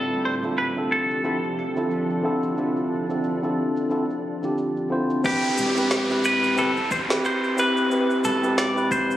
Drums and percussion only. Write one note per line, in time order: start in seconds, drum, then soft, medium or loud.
0.10 shaker soft
0.43 shaker medium
0.58 shaker soft
0.77 shaker soft
1.10 shaker medium
1.24 shaker soft
1.43 shaker soft
1.76 shaker medium
1.91 shaker soft
2.10 shaker soft
2.43 shaker medium
2.58 shaker soft
2.76 shaker soft
3.10 shaker medium
3.24 shaker soft
3.43 shaker soft
3.76 shaker medium
3.91 shaker soft
4.10 shaker soft
4.43 shaker medium
4.58 shaker soft
4.77 shaker soft
5.10 shaker medium
5.24 kick loud
5.24 shaker soft
5.43 shaker soft
5.58 shaker medium
5.77 shaker soft
5.91 snare medium
5.91 shaker soft
6.10 shaker soft
6.24 shaker medium
6.44 shaker soft
6.58 shaker soft
6.77 shaker soft
6.91 kick loud
6.91 shaker medium
7.10 snare medium
7.10 shaker soft
7.25 shaker soft
7.44 shaker soft
7.58 shaker medium
7.77 shaker soft
7.91 shaker soft
8.10 shaker soft
8.24 shaker medium
8.44 shaker soft
8.58 snare medium
8.58 shaker soft
8.77 shaker soft
8.91 kick loud
8.91 shaker medium
9.11 shaker soft